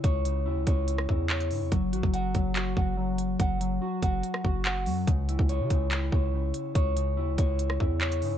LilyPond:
<<
  \new Staff \with { instrumentName = "Clean electric guitar" } { \time 4/4 \key cis \minor \tempo 4 = 143 <cis e' cis''>8 cis8 e'8 cis''4 e'8 cis''8 cis8 | fis8 fis'8 fis''8 fis8 fis'8 fis''8 fis4 | fis''8 fis8 fis'8 fis''4 fis'8 fis''8 fis8 | cis8 e'8 cis''8 cis8 e'8 cis''8 cis4 |
cis''8 cis8 e'8 cis''4 e'8 cis''8 cis8 | }
  \new Staff \with { instrumentName = "808-style bass" } { \clef bass \time 4/4 \key cis \minor cis,4 dis,16 cis,16 cis,4 e,4 gis,16 e,16 | fis,,8 a,,16 fis,,8. fis,,4 fis,,4. | fis,,4 r8 fis,,8 r8 fis,,4 fis,8 | cis,8. cis,8 cis16 cis,4 cis,4 r8 |
cis,4 dis,16 cis,16 cis,4 e,4 gis,16 e,16 | }
  \new DrumStaff \with { instrumentName = "Drums" } \drummode { \time 4/4 <hh bd>8 hh8 r8 <hh bd>8 hh16 ss16 bd8 <hc hh>16 hh16 hho8 | <hh bd>8 hh16 bd16 hh8 <hh bd>8 <hc hh>8 bd8 r8 hh8 | <hh bd>8 hh8 r8 <hh bd>8 hh16 ss16 bd8 <hc hh>8 hho8 | <hh bd>8 hh16 bd16 hh8 <hh bd>8 <hc hh>8 bd8 r8 hh8 |
<hh bd>8 hh8 r8 <hh bd>8 hh16 ss16 bd8 <hc hh>16 hh16 hho8 | }
>>